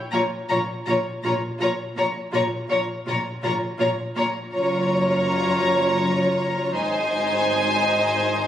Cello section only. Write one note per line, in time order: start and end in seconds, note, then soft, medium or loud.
0.12 0.20 A#2 medium
0.49 0.57 A#2 medium
0.87 0.95 A#2 medium
1.23 1.31 A#2 medium
1.60 1.68 A#2 medium
1.96 2.04 A#2 medium
2.33 2.41 A#2 medium
2.69 2.77 A#2 medium
3.06 3.14 A#2 medium
3.43 3.51 A#2 medium
3.79 3.87 A#2 medium
4.16 4.24 A#2 medium
4.53 6.71 F#2 medium
6.74 8.47 G#2 medium